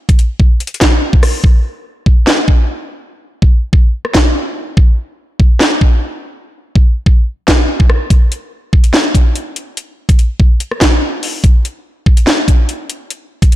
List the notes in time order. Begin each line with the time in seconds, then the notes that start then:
0.09 kick, closed hi-hat
0.19 closed hi-hat
0.40 kick
0.60 closed hi-hat
0.67 closed hi-hat
0.74 closed hi-hat
0.81 kick, snare, clap, closed hi-hat
1.13 kick
1.23 cross-stick, open hi-hat
1.44 kick
2.06 kick
2.27 snare, clap
2.48 kick
3.42 kick
3.73 kick
4.05 cross-stick
4.15 kick, snare, clap
4.77 kick
5.40 kick
5.60 snare, clap
5.81 kick
6.76 kick
7.06 kick
7.48 kick, snare, clap
7.80 kick
7.90 cross-stick
8.10 kick, closed hi-hat
8.32 closed hi-hat
8.73 kick
8.84 closed hi-hat
8.94 snare, clap
9.15 kick, closed hi-hat
9.36 closed hi-hat
9.56 closed hi-hat
9.77 closed hi-hat
10.09 kick, closed hi-hat
10.19 closed hi-hat
10.40 kick
10.60 closed hi-hat
10.71 cross-stick
10.81 kick, snare, clap, closed hi-hat
11.23 open hi-hat
11.44 kick, closed hi-hat
11.65 closed hi-hat
12.06 kick
12.17 closed hi-hat
12.27 snare, clap
12.48 kick, closed hi-hat
12.69 closed hi-hat
12.90 closed hi-hat
13.10 closed hi-hat
13.42 kick, closed hi-hat
13.52 closed hi-hat